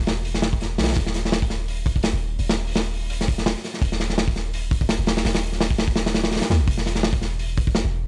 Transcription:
Already playing: 808-style bass E1
0.07 snare, open hi-hat
0.25 open hi-hat
0.34 snare
0.42 snare, open hi-hat
0.53 kick
0.61 snare, open hi-hat
0.78 808-style bass B1, snare, open hi-hat
0.83 snare, open hi-hat
0.87 snare, open hi-hat
0.93 snare, open hi-hat
0.95 808-style bass D#1, kick, open hi-hat
1.06 snare
1.14 snare, open hi-hat
1.25 snare
1.32 snare, open hi-hat
1.42 kick
1.50 snare, open hi-hat
1.68 open hi-hat
1.86 kick, open hi-hat
1.96 kick
2.03 snare, open hi-hat
2.13 808-style bass D#1
2.39 808-style bass D#1, open hi-hat
2.49 snare, open hi-hat
2.67 open hi-hat
2.75 snare, open hi-hat
2.94 open hi-hat
3.10 open hi-hat
3.21 snare
3.28 kick, open hi-hat
3.38 snare
3.46 snare, open hi-hat
3.56 snare
3.64 snare, open hi-hat
3.74 snare
3.82 808-style bass D#1, kick, open hi-hat
3.92 snare
4.00 snare, open hi-hat
4.10 snare
4.18 snare, open hi-hat
4.28 kick
4.36 snare, open hi-hat
4.53 open hi-hat
4.71 kick, open hi-hat
4.81 kick
4.89 snare, open hi-hat
4.99 808-style bass D#1
5.06 snare, open hi-hat
5.17 snare, open hi-hat
5.25 808-style bass D#1, snare, open hi-hat
5.34 snare, open hi-hat
5.43 open hi-hat
5.52 snare
5.61 snare, open hi-hat
5.71 kick
5.78 snare, open hi-hat
5.88 kick
5.96 snare, open hi-hat
6.06 snare, open hi-hat
6.14 snare, open hi-hat
6.24 snare, open hi-hat
6.31 snare, open hi-hat
6.36 snare, open hi-hat
6.42 snare, open hi-hat
6.50 808-style bass D#2, snare, open hi-hat
6.60 808-style bass A#1
6.68 808-style bass E1, kick, open hi-hat
6.78 snare
6.86 snare, open hi-hat
6.95 snare
7.03 snare, open hi-hat
7.13 kick
7.22 snare, open hi-hat
7.39 open hi-hat
7.57 kick, open hi-hat
7.67 kick
7.75 snare, open hi-hat
7.85 808-style bass E1

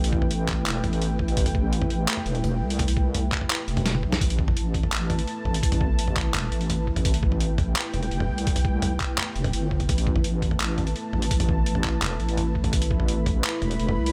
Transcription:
Already playing: wobble bass A1, analog synth pad A3 E4 B4 G5
0.04 open hi-hat
0.13 kick
0.22 mid tom
0.31 closed hi-hat
0.48 kick, clap, mid tom, open hi-hat
0.66 wobble bass E1, clap, closed hi-hat
0.84 wobble bass A1, closed hi-hat, mid tom
0.93 open hi-hat
1.02 closed hi-hat
1.19 kick, mid tom
1.28 closed hi-hat
1.37 kick, closed hi-hat
1.46 mid tom, open hi-hat
1.55 kick
1.73 closed hi-hat
1.82 mid tom
1.90 open hi-hat
2.08 clap, closed hi-hat
2.17 mid tom
2.26 wobble bass E1, closed hi-hat
2.35 closed hi-hat
2.44 wobble bass E1, mid tom, open hi-hat
2.61 wobble bass C2
2.70 open hi-hat
2.79 kick, closed hi-hat, mid tom
2.88 open hi-hat
2.97 kick
3.15 closed hi-hat, mid tom
3.32 kick, clap, open hi-hat
3.41 mid tom
3.50 clap, closed hi-hat
3.68 wobble bass E1, closed hi-hat
3.77 mid tom, open hi-hat
3.86 snare, closed hi-hat
3.95 high tom
4.03 wobble bass B1, kick
4.12 snare, closed hi-hat, mid tom
4.21 wobble bass A1, analog synth pad A3 E4 B4 A5, kick, closed hi-hat, mid tom
4.30 open hi-hat
4.39 kick
4.48 mid tom
4.57 closed hi-hat
4.74 kick, open hi-hat
4.83 mid tom
4.92 clap, closed hi-hat
5.10 closed hi-hat, mid tom
5.19 closed hi-hat
5.28 open hi-hat
5.45 wobble bass A1, mid tom
5.54 open hi-hat
5.63 wobble bass A1, kick, closed hi-hat
5.72 mid tom, open hi-hat
5.81 kick
5.99 closed hi-hat
6.08 mid tom
6.16 kick, clap, open hi-hat
6.34 wobble bass E1, clap, closed hi-hat, mid tom
6.52 wobble bass A1, closed hi-hat
6.61 open hi-hat
6.70 closed hi-hat, mid tom
6.87 kick
6.96 closed hi-hat, mid tom
7.05 analog synth pad G5, kick, closed hi-hat
7.14 open hi-hat
7.23 kick
7.32 mid tom
7.40 closed hi-hat
7.58 kick, mid tom, open hi-hat
7.76 clap, closed hi-hat
7.94 wobble bass E1, closed hi-hat, mid tom
8.03 closed hi-hat
8.11 wobble bass E1, open hi-hat
8.20 mid tom
8.29 wobble bass C2
8.38 open hi-hat
8.47 kick, closed hi-hat
8.56 mid tom, open hi-hat
8.65 kick
8.82 closed hi-hat, mid tom
9.00 kick, clap, open hi-hat
9.18 clap, mid tom
9.36 wobble bass E1, closed hi-hat
9.44 mid tom, open hi-hat
9.53 wobble bass G1, closed hi-hat
9.71 kick
9.80 closed hi-hat, mid tom
9.89 wobble bass A1, analog synth pad A5, kick, closed hi-hat, mid tom
9.98 open hi-hat
10.07 kick
10.16 mid tom
10.24 closed hi-hat
10.42 kick, open hi-hat
10.51 mid tom
10.60 clap, closed hi-hat
10.78 closed hi-hat, mid tom
10.87 closed hi-hat
10.96 open hi-hat
11.13 wobble bass A1, mid tom
11.22 open hi-hat
11.31 wobble bass A1, kick, closed hi-hat
11.40 mid tom, open hi-hat
11.49 kick
11.66 closed hi-hat
11.75 mid tom
11.84 kick, clap, open hi-hat
12.02 wobble bass E1, clap, closed hi-hat, mid tom
12.20 wobble bass A1, closed hi-hat
12.29 open hi-hat
12.37 closed hi-hat, mid tom
12.55 kick
12.64 closed hi-hat, mid tom
12.73 analog synth pad B5, kick, closed hi-hat
12.82 open hi-hat
12.91 kick
13.00 mid tom
13.08 closed hi-hat
13.26 kick, mid tom, open hi-hat
13.44 clap, closed hi-hat
13.62 wobble bass E1, closed hi-hat, mid tom
13.71 closed hi-hat
13.79 wobble bass E1, open hi-hat
13.89 mid tom
13.97 wobble bass C2
14.06 open hi-hat

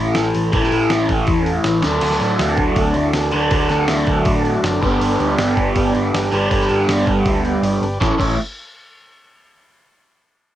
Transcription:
Already playing: picked electric bass A1, overdriven electric guitar A2 E3 A3 C#4 E4
0.15 picked electric bass A1, snare, open hi-hat
0.35 picked electric bass A1, open hi-hat
0.52 picked electric bass A1, overdriven electric guitar A2 E3 A3, kick, open hi-hat
0.56 overdriven electric guitar C#4 E4
0.63 snare
0.72 picked electric bass A1, open hi-hat
0.90 picked electric bass A1, snare, open hi-hat
1.09 picked electric bass A1, kick, open hi-hat
1.27 picked electric bass E2, kick, open hi-hat
1.46 open hi-hat
1.64 picked electric bass A1, snare, open hi-hat
1.83 picked electric bass D2, overdriven electric guitar D3 F#3 A3, snare, open hi-hat
1.88 overdriven electric guitar D4
2.01 picked electric bass D2, transistor combo organ F#4 A4 D5, crash
2.10 snare
2.20 picked electric bass A2, transistor combo organ F#4 A4 D5, snare, open hi-hat
2.39 picked electric bass D2, transistor combo organ F#4 A4 D5, snare, open hi-hat
2.57 transistor combo organ F#4 A4, kick, open hi-hat
2.61 transistor combo organ D5
2.76 picked electric bass D2, transistor combo organ F#4 A4 D5, kick, open hi-hat
2.94 picked electric bass D2, transistor combo organ F#4 A4 D5, open hi-hat
3.13 picked electric bass D2, transistor combo organ F#4 A4, snare, open hi-hat
3.18 transistor combo organ D5
3.31 picked electric bass D2, overdriven electric guitar D3 F#3, transistor combo organ F#4, open hi-hat
3.35 overdriven electric guitar A3 D4, transistor combo organ A4 D5
3.51 picked electric bass D2, transistor combo organ F#4 A4 D5, kick, open hi-hat
3.69 picked electric bass D2, transistor combo organ F#4 A4 D5, snare, open hi-hat
3.88 picked electric bass D2, transistor combo organ F#4 A4 E5, snare, open hi-hat
4.07 picked electric bass D2, transistor combo organ F#4 A4 D5, kick, open hi-hat
4.25 picked electric bass A2, transistor combo organ F#4 A4 D5, kick, open hi-hat
4.43 transistor combo organ F#4 A4 D5, open hi-hat
4.63 picked electric bass F#1, transistor combo organ F#4 A4 D5, snare, open hi-hat
4.80 picked electric bass G1, overdriven electric guitar G2 D3, transistor combo organ G4 B4 D5, kick, open hi-hat
4.84 overdriven electric guitar G3 B3 D4
5.01 picked electric bass G1, open hi-hat
5.19 picked electric bass D2, transistor combo organ G4 B4 D5, open hi-hat
5.37 picked electric bass G1, transistor combo organ G4 B4 D5, snare, open hi-hat
5.55 transistor combo organ G4 B4 D5, kick, open hi-hat
5.76 picked electric bass G1, transistor combo organ G4 B4 D5, kick, open hi-hat
5.95 picked electric bass G1, transistor combo organ G4 B4 D5, open hi-hat
6.13 picked electric bass G1, transistor combo organ G4 B4 D5, snare, open hi-hat
6.32 picked electric bass G1, overdriven electric guitar G2 D3 G3, transistor combo organ G4 B4 D5, open hi-hat
6.36 overdriven electric guitar B3 D4
6.51 picked electric bass G1, transistor combo organ G4 B4 D5, kick, open hi-hat
6.61 snare
6.69 picked electric bass G1, transistor combo organ G4 B4 D5, open hi-hat
6.88 picked electric bass G1, transistor combo organ G4 B4 D5, snare, open hi-hat
7.07 picked electric bass G1, transistor combo organ G4 B4 D5, kick, open hi-hat
7.26 picked electric bass D2, transistor combo organ G4 B4 E5, kick, open hi-hat
7.45 transistor combo organ G4 B4 D5, open hi-hat
7.63 picked electric bass G1, transistor combo organ G4 B4 D5, open hi-hat
7.81 picked electric bass G1, transistor combo organ G4 B4 D5, open hi-hat
8.00 picked electric bass A1, overdriven electric guitar A2 E3 A3 C#4 E4, transistor combo organ E4 A4 C#5, kick, snare
8.18 picked electric bass A1, overdriven electric guitar A2 E3 A3 C#4 E4, kick, crash

